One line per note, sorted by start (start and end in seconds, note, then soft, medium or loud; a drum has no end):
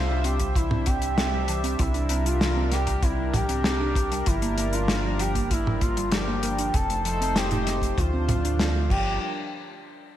0.00 1.76 C2 medium
0.00 6.70 G3 medium
0.00 6.70 D4 medium
0.00 0.26 F4 medium
0.00 1.75 C5 medium
0.00 4.23 E5 medium
0.09 0.24 D4 medium
0.24 0.35 C4 medium
0.24 0.57 G4 loud
0.24 closed hi-hat medium
0.40 0.51 G3 medium
0.40 kick medium
0.40 closed hi-hat medium
0.55 0.66 E3 medium
0.55 0.88 E4 medium
0.55 kick loud
0.55 closed hi-hat medium
0.71 0.85 C4 loud
0.71 mid tom medium
0.86 0.93 C4 loud
0.86 1.81 G4 loud
0.86 kick loud
0.86 closed hi-hat medium
1.02 1.17 D4 medium
1.02 closed hi-hat medium
1.17 1.28 C4 medium
1.17 snare loud
1.17 closed hi-hat medium
1.33 1.44 G3 medium
1.48 1.59 E3 medium
1.48 closed hi-hat medium
1.64 1.78 C4 loud
1.64 closed hi-hat medium
1.79 4.24 C2 medium
1.79 1.86 C4 loud
1.79 2.27 E4 loud
1.79 6.70 A#4 medium
1.79 kick loud
1.79 closed hi-hat medium
1.94 2.09 D4 medium
1.94 closed hi-hat soft
2.09 2.21 C4 medium
2.09 closed hi-hat medium
2.25 2.36 G3 medium
2.25 2.71 F4 loud
2.25 closed hi-hat medium
2.41 2.52 E3 medium
2.41 snare loud
2.41 closed hi-hat medium
2.56 2.71 C4 loud
2.72 2.78 C4 loud
2.72 3.04 G4 loud
2.72 snare soft
2.72 closed hi-hat medium
2.87 3.02 D4 medium
2.87 kick medium
2.87 closed hi-hat medium
3.03 3.14 C4 medium
3.03 3.33 E4 loud
3.03 kick loud
3.03 closed hi-hat medium
3.18 3.29 G3 medium
3.33 3.45 E3 medium
3.33 4.28 G4 loud
3.33 kick medium
3.33 closed hi-hat medium
3.33 mid tom loud
3.49 3.63 C4 loud
3.49 closed hi-hat medium
3.64 3.71 C4 loud
3.64 snare loud
3.64 closed hi-hat medium
3.80 3.95 D4 medium
3.95 4.07 C4 medium
3.95 kick loud
3.95 closed hi-hat medium
4.11 4.22 G3 medium
4.11 closed hi-hat medium
4.26 6.71 G1 medium
4.26 4.37 F3 medium
4.26 8.87 F3 medium
4.26 4.75 E4 loud
4.26 kick loud
4.26 closed hi-hat loud
4.42 4.56 A#3 loud
4.42 closed hi-hat medium
4.58 4.64 A#3 loud
4.58 closed hi-hat medium
4.73 4.88 D4 medium
4.73 5.21 F4 loud
4.73 closed hi-hat medium
4.88 4.99 A#3 medium
4.88 snare loud
4.88 closed hi-hat medium
5.04 5.15 G3 medium
5.19 5.30 F3 medium
5.19 5.50 G4 loud
5.19 closed hi-hat medium
5.35 5.49 A#3 loud
5.35 kick medium
5.35 closed hi-hat medium
5.50 5.57 A#3 loud
5.50 5.83 E4 loud
5.50 kick loud
5.50 closed hi-hat medium
5.66 5.81 D4 medium
5.66 mid tom medium
5.81 5.92 A#3 medium
5.81 6.14 F4 loud
5.81 kick loud
5.81 closed hi-hat medium
5.97 6.08 G3 medium
5.97 closed hi-hat medium
6.12 6.23 F3 medium
6.12 6.76 G4 loud
6.12 snare loud
6.12 closed hi-hat medium
6.28 6.42 A#3 loud
6.43 6.50 A#3 loud
6.43 closed hi-hat loud
6.58 6.73 D4 medium
6.58 closed hi-hat medium
6.74 7.95 F1 medium
6.74 8.89 A3 medium
6.74 6.85 C4 medium
6.74 7.97 D#4 medium
6.74 7.05 A4 loud
6.74 8.89 C5 medium
6.74 kick loud
6.74 closed hi-hat medium
6.90 7.00 A3 medium
6.90 closed hi-hat medium
7.05 7.16 F3 medium
7.05 7.38 A4 loud
7.05 closed hi-hat medium
7.20 7.35 C4 loud
7.20 closed hi-hat medium
7.36 7.43 C4 loud
7.36 8.00 G4 loud
7.36 snare loud
7.36 closed hi-hat loud
7.51 7.66 D#4 medium
7.51 closed hi-hat soft
7.51 mid tom medium
7.67 7.78 C4 medium
7.67 snare soft
7.67 closed hi-hat medium
7.82 7.93 A3 medium
7.82 kick medium
7.82 closed hi-hat medium
7.98 8.90 D2 medium
7.98 8.09 F3 medium
7.98 8.89 D4 medium
7.98 8.90 F4 loud
7.98 kick loud
7.98 closed hi-hat medium
8.13 8.28 C4 loud
8.28 8.35 C4 loud
8.28 kick medium
8.28 closed hi-hat medium
8.28 mid tom loud
8.44 8.59 D4 medium
8.44 closed hi-hat medium
8.59 8.71 C4 medium
8.59 snare loud
8.59 closed hi-hat medium
8.75 8.86 A3 medium
8.90 9.19 G1 loud
8.90 9.19 F3 loud
8.90 9.19 G3 medium
8.90 9.19 D4 medium
8.90 9.19 F4 medium
8.90 9.19 G4 medium
8.90 9.19 A#4 medium
8.90 kick loud
8.90 crash medium